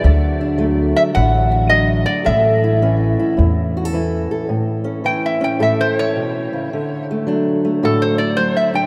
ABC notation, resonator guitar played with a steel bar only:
X:1
M:4/4
L:1/8
Q:"Swing" 1/4=108
K:A
V:1 name="Resonator guitar played with a steel bar"
d3 e f2 ^d =d | e4 z4 | z2 (3=g e g (3e =c ^c- c2- | c z3 (3A =c d (3c e =g |]